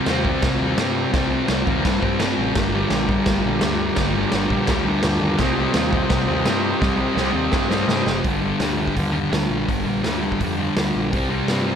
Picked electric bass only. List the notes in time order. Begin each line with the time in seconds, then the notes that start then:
0.07 D#2
0.42 C2
0.60 D#2
0.77 G2
1.13 C2
1.49 C2
1.67 D#2
1.85 G2
2.02 G2
2.20 G2
2.38 A1
2.56 G1
2.91 A#1
3.26 G1
3.44 A#1
3.62 D2
3.97 G1
4.32 G1
4.50 A#1
4.68 D2
4.86 D2
5.04 D2
5.20 D#2
5.39 C2
5.75 D#2
6.10 C2
6.28 D#2
6.45 G2
6.82 C2
7.16 C2
7.34 D#2
7.53 G2
7.70 G2
7.88 G2
8.06 F#1
8.25 G1
8.60 D2
8.97 D#2
9.32 D2
9.50 A#1
9.69 G1
9.86 A#1
10.04 D2
10.40 F2
10.76 D2
10.95 A#1
11.13 C2
11.48 G2